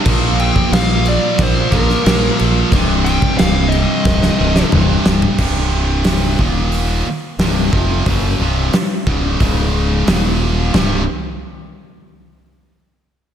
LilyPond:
<<
  \new Staff \with { instrumentName = "Lead electric guitar" } { \time 4/4 \key bes \major \tempo 4 = 90 r8 g''8 f''8 d''8 c''8 bes'4 r8 | r8 g''8 f''8 ees''4. r4 | r1 | r1 |
r1 | }
  \new Staff \with { instrumentName = "Distorted electric guitar" } { \clef bass \time 4/4 \key bes \major <bes, f bes>2~ <bes, f bes>8 <bes, f bes>8 <bes, f bes>4 | <c, g, c>2~ <c, g, c>8 <c, g, c>8 <c, g, c>4 | <c, g, c>4. <ees, bes, ees>4 r8 <c, g, c>8 <f, c f>8 | <fis, des fis>8 <c, g, c>8 r8 <des, aes, des>8 <des, aes, des>4 <ees, bes, ees>4 |
<c, g, c>8 r2. r8 | }
  \new Staff \with { instrumentName = "Fingered electric bass" } { \clef bass \time 4/4 \key bes \major bes,,4 bes,,4 bes,,8 bes,,8 bes,,8 bes,,8 | c,,4 c,,4 c,,8 c,,8 c,,8 c,,8 | c,,4. ees,,4 r8 c,,8 f,,8 | fis,,8 c,,8 r8 des,,8 des,,4 ees,,4 |
c,,8 r2. r8 | }
  \new DrumStaff \with { instrumentName = "Drums" } \drummode { \time 4/4 <cymc bd>8 cymc16 bd16 <cymc sn>8 cymc8 <cymc bd>8 <cymc bd>16 sn16 <cymc sn>8 cymc8 | <cymc bd>8 cymc16 bd16 <cymc sn>8 cymc8 <bd sn>16 sn8 sn16 toml8 sn16 tomfh16 | <cymc bd>4 <hho sn>8 bd8 hho4 <hho sn>8 bd8 | <hho bd>4 <hho sn>8 bd8 <hho bd>4 <hho sn>4 |
<sn tomfh>4 r4 r4 r4 | }
>>